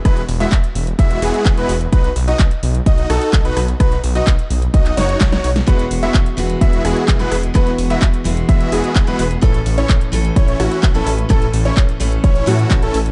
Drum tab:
HH |xxoxxxoxxxoxxxox|xxoxxxoxxxoxxxox|xxoxxxoxxxoxxxox|xxoxxxoxxxoxxxox|
CP |----x-------x---|----x-------x---|----x----x--x---|----x-------x---|
SD |r---------------|----------r---r-|r---------o-oo-o|----------r---r-|
BD |o---o---o---o---|o---o---o---o---|o---o---o---o---|o---o---o---o---|

HH |xxoxxxoxxxoxxxox|xxoxxxoxxxoxxxox|xxoxxxoxxxoxxxox|
CP |----x-------x---|----x-------x---|----x-------x---|
SD |r---------------|----------r---r-|r---------------|
BD |o---o---o---o---|o---o---o---o---|o---o---o---o---|